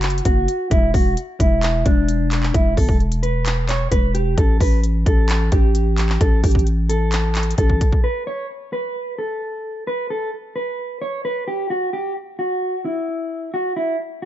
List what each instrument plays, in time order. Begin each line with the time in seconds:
Already playing: 808-style bass F#1, clean electric guitar F#4
0.02 clap, closed hi-hat
0.10 closed hi-hat
0.18 closed hi-hat
0.25 808-style bass F#1, clean electric guitar F#4, kick, closed hi-hat
0.48 closed hi-hat
0.71 808-style bass E1, clean electric guitar E4, kick, closed hi-hat
0.94 808-style bass E1, clean electric guitar F#4, kick, open hi-hat
1.17 closed hi-hat
1.40 808-style bass E1, clean electric guitar E4, kick, closed hi-hat
1.63 clap, closed hi-hat
1.85 808-style bass E1, clean electric guitar D4, kick, closed hi-hat
2.09 closed hi-hat
2.32 clap, closed hi-hat
2.43 clap
2.54 808-style bass E1, clean electric guitar E4, kick, closed hi-hat
2.77 808-style bass G1, clean electric guitar A4, kick, open hi-hat
2.89 808-style bass E1, kick
3.00 closed hi-hat
3.12 closed hi-hat
3.23 clean electric guitar B4, closed hi-hat
3.46 clap, closed hi-hat
3.69 clean electric guitar C#5, clap, closed hi-hat
3.91 808-style bass E1, clean electric guitar B4, kick, closed hi-hat
4.15 clean electric guitar G4, closed hi-hat
4.37 808-style bass A1, clean electric guitar A4, kick, closed hi-hat
4.60 808-style bass A1, clean electric guitar B4, kick, open hi-hat
4.84 closed hi-hat
5.06 808-style bass A1, clean electric guitar A4, kick, closed hi-hat
5.29 clap, closed hi-hat
5.52 808-style bass A1, clean electric guitar G4, kick, closed hi-hat
5.75 closed hi-hat
5.98 clap, closed hi-hat
6.09 clap
6.21 808-style bass A1, clean electric guitar A4, kick, closed hi-hat
6.44 808-style bass A1, clean electric guitar G4, kick, closed hi-hat, open hi-hat
6.51 kick, closed hi-hat
6.59 closed hi-hat
6.67 closed hi-hat
6.89 clean electric guitar A4, closed hi-hat
7.12 clap, closed hi-hat
7.35 clap, closed hi-hat
7.43 closed hi-hat
7.51 closed hi-hat
7.58 808-style bass A1, clean electric guitar A4, kick, closed hi-hat
7.70 kick
7.81 kick, closed hi-hat
7.93 kick
8.04 clean electric guitar B4
8.27 clean electric guitar C#5
8.73 clean electric guitar B4
9.19 clean electric guitar A4
9.87 clean electric guitar B4
10.10 clean electric guitar A4
10.56 clean electric guitar B4
11.02 clean electric guitar C#5
11.25 clean electric guitar B4
11.48 clean electric guitar G4
11.70 clean electric guitar F#4
11.93 clean electric guitar G4
12.39 clean electric guitar F#4
12.85 clean electric guitar E4
13.54 clean electric guitar F#4
13.76 clean electric guitar E4